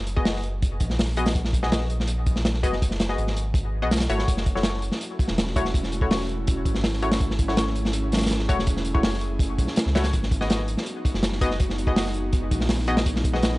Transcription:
Already playing: sub bass F#1
0.07 closed hi-hat
0.16 synth stab B3 F#4 G#4 D#5, kick
0.25 snare, open hi-hat
0.35 snare
0.44 closed hi-hat
0.62 kick, closed hi-hat
0.80 sub bass A#1, kick, closed hi-hat
0.90 snare
0.99 snare, open hi-hat
1.08 snare
1.17 synth stab B3 F#4 G#4 D#5, closed hi-hat
1.26 snare, open hi-hat
1.35 kick, closed hi-hat
1.45 snare
1.53 kick, closed hi-hat
1.63 synth stab B3 F#4 G#4 D#5, snare
1.72 snare, closed hi-hat
1.81 snare
1.90 closed hi-hat
2.00 snare
2.08 closed hi-hat
2.26 kick, closed hi-hat
2.36 snare
2.45 snare, closed hi-hat
2.54 snare
2.63 sub bass F#1, synth stab B3 F#4 G#4 D#5, kick, closed hi-hat
2.73 snare
2.82 kick, closed hi-hat
2.91 snare
3.00 snare, closed hi-hat
3.09 synth stab B3 F#4 G#4 D#5, snare
3.18 sub bass G#1, closed hi-hat
3.27 snare
3.37 closed hi-hat
3.54 kick, closed hi-hat
3.82 sub bass B1, synth stab B3 F#4 G#4 D#5
3.91 snare, closed hi-hat
3.96 snare, closed hi-hat
4.00 snare, closed hi-hat
4.09 sub bass G#1, synth stab A3 E4 F#4 C#5, closed hi-hat
4.19 snare
4.28 sub bass F#1, analog synth pad A3 C#4 E4 F#4, kick, closed hi-hat
4.37 snare
4.46 kick, closed hi-hat
4.55 synth stab A3 E4 F#4 C#5, snare
4.63 snare, closed hi-hat
4.74 snare
4.82 closed hi-hat
4.92 snare
5.01 closed hi-hat
5.19 kick, closed hi-hat
5.28 sub bass E1, snare
5.38 snare, closed hi-hat
5.47 snare
5.56 synth stab A3 E4 F#4 C#5, kick, closed hi-hat
5.65 snare
5.74 kick, closed hi-hat
5.83 snare
5.92 closed hi-hat
6.01 synth stab A3 E4 F#4 C#5, kick
6.11 snare, open hi-hat
6.20 snare
6.29 closed hi-hat
6.47 kick, closed hi-hat
6.65 sub bass G#1, kick, closed hi-hat
6.75 snare
6.84 snare, open hi-hat
6.93 snare
7.02 synth stab A3 E4 F#4 C#5, closed hi-hat
7.12 snare, open hi-hat
7.20 analog synth pad G#4, kick, closed hi-hat
7.30 snare
7.39 kick, closed hi-hat
7.48 synth stab A3 E4 F#4 C#5, snare
7.57 snare, closed hi-hat
7.67 snare
7.76 closed hi-hat
7.85 snare
7.93 closed hi-hat
8.12 snare, closed hi-hat
8.17 snare, closed hi-hat
8.21 snare, closed hi-hat
8.26 snare, closed hi-hat
8.30 snare, closed hi-hat
8.39 snare
8.49 sub bass E1, synth stab A3 E4 F#4 C#5, kick, closed hi-hat
8.59 snare
8.67 kick, closed hi-hat
8.77 snare
8.85 closed hi-hat
8.94 synth stab A3 E4 F#4 C#5, kick
9.03 sub bass F#1, snare, open hi-hat
9.14 snare
9.21 closed hi-hat
9.39 kick, closed hi-hat
9.58 sub bass B1, kick, closed hi-hat
9.67 snare
9.76 snare, closed hi-hat
9.86 sub bass C#2, snare
9.95 synth stab A3 E4 F#4 C#5, snare, closed hi-hat
10.04 snare, closed hi-hat
10.13 sub bass G#1, analog synth pad G#3 B3 D#4 F#4, kick, closed hi-hat
10.23 snare
10.31 kick, closed hi-hat
10.41 synth stab B3 F#4 G#4 D#5, snare
10.50 snare, closed hi-hat
10.59 snare
10.68 closed hi-hat
10.77 snare
10.86 closed hi-hat
11.05 kick, closed hi-hat
11.14 sub bass F#1, snare
11.23 snare, closed hi-hat
11.32 snare
11.41 synth stab B3 F#4 G#4 D#5, kick, closed hi-hat
11.51 snare
11.60 kick, closed hi-hat
11.70 snare
11.78 closed hi-hat
11.87 synth stab B3 F#4 G#4 D#5, kick
11.96 snare, open hi-hat
12.06 snare
12.14 closed hi-hat
12.33 kick, closed hi-hat
12.51 sub bass A#1, kick, closed hi-hat
12.60 snare
12.69 snare, open hi-hat
12.79 snare
12.88 synth stab B3 F#4 G#4 D#5, closed hi-hat
12.97 snare, open hi-hat
13.06 analog synth pad G#4, kick, closed hi-hat
13.16 snare
13.24 kick, closed hi-hat
13.33 synth stab B3 F#4 G#4 D#5, snare
13.42 snare, closed hi-hat
13.52 snare

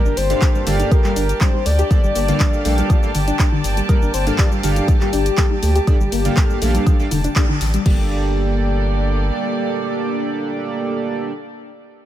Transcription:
Already playing: string section G3 A#3 G4 D5 A5, soft synth lead A#4
0.05 analog synth bass G1, synth pluck D4, cabasa
0.17 analog synth bass G1, soft synth lead C5, open hi-hat, cabasa
0.30 analog polysynth G2 A#3 D4 G4 A4 F5, synth pluck D4, closed hi-hat, cabasa
0.42 synth pluck G4, kick, clap, closed hi-hat, cabasa, high woodblock
0.55 synth pluck G3, cabasa
0.67 analog synth bass G1, analog polysynth G2 A#3 D4 G4 A4 F5, synth pluck D3, soft synth lead D5, open hi-hat, low conga, cabasa
0.80 closed hi-hat, high conga, cabasa
0.91 synth pluck G4, soft synth lead A#4, kick, closed hi-hat, cabasa, high woodblock
1.04 analog polysynth G2 A#3 D4 G4 A4 F5, synth pluck G3, clap, cabasa
1.16 analog synth bass G1, synth pluck D4, open hi-hat, cabasa
1.29 closed hi-hat, cabasa
1.41 analog polysynth G2 A#3 D4 G4 A4 D5, synth pluck G3, soft synth lead C5, kick, clap, closed hi-hat, cabasa, high woodblock
1.54 synth pluck G3, high conga, low conga
1.66 analog synth bass D2, synth pluck A3, soft synth lead D5, open hi-hat, cabasa
1.79 synth pluck G4, closed hi-hat, cabasa
1.91 analog polysynth G2 A#3 D4 G4 A4 D5, kick, closed hi-hat, cabasa, high woodblock
2.04 analog synth bass G1, synth pluck G3, cabasa
2.15 analog synth bass G1, synth pluck A#3, open hi-hat, cabasa
2.28 analog polysynth G2 A#3 D4 G4 A4 F5, synth pluck D3, closed hi-hat, cabasa
2.40 synth pluck G3, kick, clap, closed hi-hat, cabasa, high woodblock
2.53 cabasa
2.65 analog synth bass A#1, analog polysynth G2 A#3 D4 G4 A4 F5, synth pluck A3, open hi-hat, low conga, cabasa
2.78 synth pluck G3, closed hi-hat, high conga, cabasa
2.90 synth pluck F3, kick, closed hi-hat, cabasa, high woodblock
3.03 analog polysynth G2 A#3 D4 G4 A4 F5, cabasa
3.15 analog synth bass G1, synth pluck D3, open hi-hat, cabasa
3.28 synth pluck D4, closed hi-hat, cabasa
3.39 analog polysynth G2 A#3 D4 G4 A4 D5, synth pluck D4, kick, clap, closed hi-hat, cabasa, high woodblock
3.52 synth pluck D3, high conga
3.64 analog synth bass G1, open hi-hat, cabasa
3.77 synth pluck G3, closed hi-hat, cabasa
3.89 analog polysynth G2 A#3 D4 G4 A4 D5, synth pluck G3, soft synth lead A#4, kick, closed hi-hat, cabasa, high woodblock
4.02 analog synth bass G1, synth pluck D4, cabasa
4.14 analog synth bass G1, soft synth lead C5, open hi-hat, cabasa
4.27 analog polysynth G2 A#3 D4 G4 A4 F5, synth pluck D4, closed hi-hat, cabasa
4.38 synth pluck G4, soft synth lead D5, kick, clap, closed hi-hat, cabasa, high woodblock
4.52 synth pluck G3, cabasa
4.63 analog synth bass G1, analog polysynth G2 A#3 D4 G4 A4 F5, synth pluck D3, soft synth lead G4, open hi-hat, low conga, cabasa
4.76 closed hi-hat, high conga, cabasa
4.88 synth pluck G4, kick, closed hi-hat, cabasa, high woodblock
5.01 analog polysynth G2 A#3 D4 G4 A4 F5, synth pluck G3, clap, cabasa
5.13 analog synth bass G1, synth pluck D4, open hi-hat, cabasa
5.26 closed hi-hat, cabasa
5.37 analog polysynth G2 A#3 D4 G4 A4 D5, synth pluck G3, kick, clap, closed hi-hat, cabasa, high woodblock
5.51 synth pluck G3, high conga, low conga
5.63 analog synth bass D2, synth pluck A3, open hi-hat, cabasa
5.75 synth pluck G4, closed hi-hat, cabasa
5.87 analog polysynth G2 A#3 D4 G4 A4 D5, kick, closed hi-hat, cabasa, high woodblock
6.00 analog synth bass G1, synth pluck G3, cabasa
6.12 analog synth bass G1, synth pluck A#3, open hi-hat, cabasa
6.25 analog polysynth G2 A#3 D4 G4 A4 F5, synth pluck D3, closed hi-hat, cabasa
6.37 synth pluck G3, kick, clap, closed hi-hat, cabasa, high woodblock
6.50 low conga, cabasa
6.62 analog synth bass A#1, analog polysynth G2 A#3 D4 G4 A4 F5, synth pluck A3, open hi-hat, low conga, cabasa
6.75 synth pluck G3, closed hi-hat, high conga, cabasa
6.86 synth pluck F3, kick, closed hi-hat, cabasa, high woodblock
7.00 analog polysynth G2 A#3 D4 G4 A4 F5, cabasa
7.11 analog synth bass F1, synth pluck D3, open hi-hat, high conga, cabasa
7.24 synth pluck D4, closed hi-hat, cabasa
7.36 analog polysynth G2 A#3 D4 G4 A4 D5, synth pluck D4, kick, clap, closed hi-hat, cabasa, high woodblock
7.49 synth pluck D3, high conga
7.61 analog synth bass A1, open hi-hat, cabasa
7.74 synth pluck G3, closed hi-hat, cabasa
7.86 analog synth bass G1, synth pluck G3, string section G3 A#3 G4 A4 D5, analog polysynth A#3 D4 G4 A4 D5, kick, crash

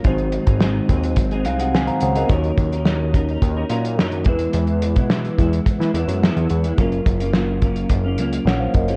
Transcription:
0.03 analog synth bass G#1, clean electric guitar G#2 D#3 F#3 C4 D#4 G#4, tine electric piano G#3 D#4 F#4, kick, closed hi-hat
0.07 tine electric piano C5
0.18 closed hi-hat
0.32 closed hi-hat
0.46 analog synth bass G#1, clean electric guitar F#3 C4 D#4 G#4, kick, closed hi-hat
0.60 clean electric guitar G#2 D#3 F#3 C4 D#4 G#4, snare
0.89 analog synth bass D#2, clean electric guitar F#3 C4 D#4 G#4, kick, closed hi-hat
1.03 closed hi-hat
1.16 analog synth bass G#1, kick, closed hi-hat
1.31 clean electric guitar F#3 C4 D#4 G#4, closed hi-hat
1.44 analog synth bass C2, clean electric guitar F#3 C4 D#4 G#4, tine electric piano F5, closed hi-hat
1.59 clean electric guitar F#3 C4 D#4 G#4, tine electric piano F#5, closed hi-hat
1.74 clean electric guitar G#2 D#3 F#3 C4 D#4 G#4, tine electric piano G#5, snare
1.87 tine electric piano C5 F5 A#5, closed hi-hat
2.00 analog synth bass C#2, tine electric piano C5 F#5, closed hi-hat
2.15 clean electric guitar F#3 C4 D#4 G#4, tine electric piano A#4 D#5, closed hi-hat
2.26 analog synth bass D#2, clean electric guitar D#3 F#3, tine electric piano A#3 D#4 F#4, kick, closed hi-hat
2.31 clean electric guitar C#4 D#4 A#4, tine electric piano C#5
2.43 closed hi-hat
2.57 analog synth bass D#2, kick, closed hi-hat
2.72 clean electric guitar C#4 D#4 A#4, closed hi-hat
2.85 clean electric guitar D#3 F#3 C#4 D#4 A#4, snare
3.13 clean electric guitar F#3 C#4 D#4 A#4, kick, closed hi-hat
3.28 clean electric guitar C#4 D#4 A#4, closed hi-hat
3.42 analog synth bass D#2, kick, closed hi-hat
3.57 clean electric guitar C#4 D#4 A#4
3.70 analog synth bass A#2, clean electric guitar F#3 C#4 D#4 A#4, closed hi-hat
3.85 closed hi-hat
3.98 analog synth bass F#2, clean electric guitar D#3 F#3 C#4 D#4 A#4, snare
4.12 closed hi-hat
4.24 analog synth bass E2, clean electric guitar E3 G#3 B3 E4, tine electric piano G#3 B3 E4, kick, closed hi-hat
4.29 tine electric piano B4
4.39 closed hi-hat
4.53 analog synth bass E2, closed hi-hat
4.67 closed hi-hat
4.82 closed hi-hat
4.96 analog synth bass B2, clean electric guitar G#3 B3 E4, kick, closed hi-hat
5.10 clean electric guitar E3 G#3 B3 E4, snare
5.25 closed hi-hat
5.38 analog synth bass E2, clean electric guitar E3 G#3 B3 E4, kick, closed hi-hat
5.53 closed hi-hat
5.66 kick, closed hi-hat
5.80 analog synth bass E3, clean electric guitar G#3 B3 E4, snare, closed hi-hat
5.94 analog synth bass E2, clean electric guitar E3 G#3 B3 E4, closed hi-hat
6.08 analog synth bass F#2, clean electric guitar G#3 B3 E4, closed hi-hat
6.21 clean electric guitar E3 G#3 B3 E4, tine electric piano G#3 B3 E4 G#4, snare
6.37 analog synth bass E2, closed hi-hat
6.50 analog synth bass E2, closed hi-hat
6.64 clean electric guitar G#3 B3 E4, closed hi-hat
6.76 analog synth bass F#1, tine electric piano F#3 C#4 F4, clean electric guitar F#3 A#3 C#4 F4, kick, closed hi-hat
6.81 tine electric piano A#4
6.92 closed hi-hat
7.06 analog synth bass F#1, kick, closed hi-hat
7.20 clean electric guitar A#3 C#4 F4, closed hi-hat
7.33 clean electric guitar F#3 A#3 C#4 F4, snare
7.62 clean electric guitar F#3 A#3 C#4 F4, kick, closed hi-hat
7.76 closed hi-hat
7.90 analog synth bass F#1, kick, closed hi-hat
8.04 clean electric guitar A#3 C#4 F4
8.17 analog synth bass C#2, clean electric guitar F#3 A#3 C#4, closed hi-hat
8.22 clean electric guitar F4
8.33 closed hi-hat
8.45 analog synth bass A#1, clean electric guitar F#3 A#3 C#4 F4, tine electric piano C#5 F#5, snare
8.60 tine electric piano C5 F5
8.74 analog synth bass F#1, tine electric piano A#4 D#5, kick, closed hi-hat
8.88 clean electric guitar A#3 C#4 F4, tine electric piano G#4 C#5, closed hi-hat

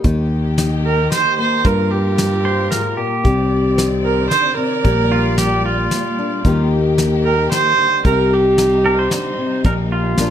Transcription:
Already playing: steel-string acoustic guitar A#3
0.04 fingered electric bass D#2, steel-string acoustic guitar D#3 G4, string section D#3 A#3 G4, kick, closed hi-hat
0.58 steel-string acoustic guitar D#4, snare, closed hi-hat
0.86 viola A#4
1.12 viola C5, snare, closed hi-hat
1.38 steel-string acoustic guitar A#3, viola C5
1.64 steel-string acoustic guitar G2 F4, fingered electric bass G2, string section G3 F4 A#4, viola A#4, kick, closed hi-hat
1.91 viola G4
2.18 steel-string acoustic guitar F4, snare, closed hi-hat
2.45 pedal steel guitar C5
2.71 steel-string acoustic guitar G#2, pedal steel guitar A#4, snare, closed hi-hat
2.97 steel-string acoustic guitar A#2, pedal steel guitar G4
3.24 fingered electric bass C2, steel-string acoustic guitar C3 G4, string section D#3 C4 D5, kick, closed hi-hat
3.78 steel-string acoustic guitar D#4, snare, closed hi-hat
4.05 viola A#4
4.30 steel-string acoustic guitar D3, viola C5, snare, closed hi-hat
4.56 steel-string acoustic guitar C3, viola A#4
4.84 fingered electric bass A#1, steel-string acoustic guitar A#2 G4, string section G3 A#3, kick, closed hi-hat
5.12 pedal steel guitar F4
5.38 steel-string acoustic guitar F4, pedal steel guitar G4, snare, closed hi-hat
5.66 pedal steel guitar F4
5.91 snare, closed hi-hat
6.19 steel-string acoustic guitar D4
6.44 fingered electric bass D#2, steel-string acoustic guitar D#3 G3 A#3 D#4 G4, string section D#3 G4, kick, closed hi-hat
6.98 steel-string acoustic guitar D#4, snare, closed hi-hat
7.25 viola A#4
7.52 steel-string acoustic guitar D#3, viola C5, snare, closed hi-hat
7.78 steel-string acoustic guitar D3
8.05 fingered electric bass C2, steel-string acoustic guitar C3 G4, string section C3 G3 D#4, viola A#4, kick, closed hi-hat
8.33 viola G4
8.58 steel-string acoustic guitar D#4, snare, closed hi-hat
8.86 pedal steel guitar A#4
8.99 pedal steel guitar C5
9.11 steel-string acoustic guitar D3, pedal steel guitar C5, snare, closed hi-hat
9.38 steel-string acoustic guitar C3
9.64 fingered electric bass A#1, steel-string acoustic guitar A#2 G4, string section A#3, pedal steel guitar A#4, kick, closed hi-hat
9.92 pedal steel guitar F4
10.17 fingered electric bass A#1, steel-string acoustic guitar A#2 F3 D4, string section F3 D4, snare, closed hi-hat
10.21 steel-string acoustic guitar F4 A#4

